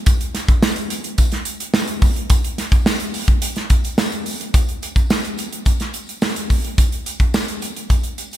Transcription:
0.06 kick, closed hi-hat, tambourine
0.21 closed hi-hat
0.34 snare, closed hi-hat, tambourine
0.48 kick, closed hi-hat, tambourine
0.62 snare, tambourine
0.76 closed hi-hat
0.90 closed hi-hat, tambourine
1.04 closed hi-hat
1.18 kick, closed hi-hat, tambourine
1.32 snare, closed hi-hat
1.45 closed hi-hat, tambourine
1.60 closed hi-hat
1.74 snare, tambourine
1.88 closed hi-hat
2.02 kick, open hi-hat, tambourine
2.16 closed hi-hat
2.30 kick, closed hi-hat, tambourine
2.44 closed hi-hat
2.58 snare, closed hi-hat, tambourine
2.72 kick, closed hi-hat, tambourine
2.86 snare, tambourine
3.00 closed hi-hat
3.14 open hi-hat, tambourine
3.28 kick, closed hi-hat
3.42 closed hi-hat, tambourine
3.56 snare, closed hi-hat
3.70 kick, closed hi-hat, tambourine
3.84 closed hi-hat, tambourine
3.98 snare, tambourine
4.12 closed hi-hat, tambourine
4.26 open hi-hat, tambourine
4.41 closed hi-hat
4.54 kick, closed hi-hat, tambourine
4.69 closed hi-hat
4.82 closed hi-hat, tambourine
4.96 kick, closed hi-hat, tambourine
5.10 snare, tambourine
5.24 closed hi-hat
5.38 closed hi-hat, tambourine
5.53 closed hi-hat
5.65 kick, closed hi-hat, tambourine
5.80 snare, closed hi-hat, tambourine
5.93 closed hi-hat, tambourine
6.07 closed hi-hat, tambourine
6.22 snare, tambourine
6.36 closed hi-hat
6.50 kick, open hi-hat, tambourine
6.65 closed hi-hat
6.78 kick, closed hi-hat, tambourine
6.92 closed hi-hat
7.06 closed hi-hat, tambourine
7.20 kick, closed hi-hat
7.34 snare, tambourine
7.48 closed hi-hat
7.61 closed hi-hat, tambourine
7.76 closed hi-hat
7.90 kick, closed hi-hat, tambourine
8.03 closed hi-hat
8.18 closed hi-hat, tambourine
8.31 closed hi-hat, tambourine

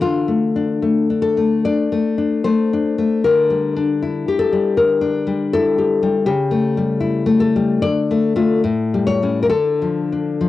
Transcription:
0.01 D3 F4
0.28 A3
0.56 D4
0.82 A3
1.10 D4
1.22 A4
1.37 A3
1.65 D4 D5
1.92 A3
2.18 D4
2.44 A3 C5
2.73 D4
2.98 A3
3.24 D3 A#4
3.50 G3
3.77 D4
4.03 E4
4.28 G4
4.39 A4
4.52 G3
4.77 D3 A#4
5.01 D4
5.27 G3
5.53 E4 A4
5.78 G4
6.03 G3
6.26 C#3 G4
6.51 A3
6.77 G3
7.00 E4
7.26 A3
7.40 A4
7.56 G3
7.82 D3 D5
8.11 A3
8.36 A3 F4
8.64 A2
8.94 G3
9.07 C#5
9.23 G3 C#4
9.43 A#4
9.50 D3 A4
9.82 F3
10.12 D4
10.41 F3

